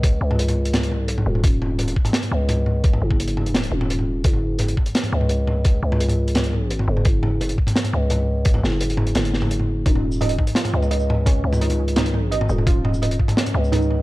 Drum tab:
HH |x-------x-x---x-x-x-----x-------|x-------x-x---x-x-x-----x-------|x-------x-x---x-x-x-----x-------|x-------x-x---x-x-x-----x-------|
SH |--------------------------------|--------------------------------|--------------------------------|--------------------------------|
SD |----------------o---------------|----------------o---------------|----------------o---------------|----------------o---------------|
T2 |o-----o---o-----o---o-----o---o-|----o---oooo--o---o-----o---o---|--o---o-----o---o-----o---o-----|--o-----o---o-----o---o-----o---|
BD |o-------------------------------|o-----------o-------------------|o-----o-------------------------|o-----------o-------------------|

HH |x-------x-x---x-x-x-----x-------|x-------x-x---x-x-x-----x-------|x-------x-x---x-x-x-----x-------|x-------x-x---x-x-x-----x-------|
SH |--------------------------------|--------------------------------|--------------------------------|------x---------------x---x-----|
SD |----------------o---------------|----------------o---------------|----o-----------o---o-----------|----------------o---------------|
T2 |o-----o---o-----o---o-----o---o-|----o---o-----o---o-----o-------|--o---o-----o---o-----o---o-----|--o-----o---o-----o---o-----o---|
BD |o-------------------------------|o-----------o-------------------|o-------------------------------|o-----------o-------------------|

HH |x-------x-x---x-x-x-----x-------|x-------x-x---x-x-x-----x-------|
SH |------x---------------------x---|------x---------------x---x-----|
SD |----------------o---------------|----------------o---------------|
T2 |o-----o---o-----o---o-----o---o-|----o---o-----o---o-----o---o---|
BD |o-------------------------------|o-----------o-------------------|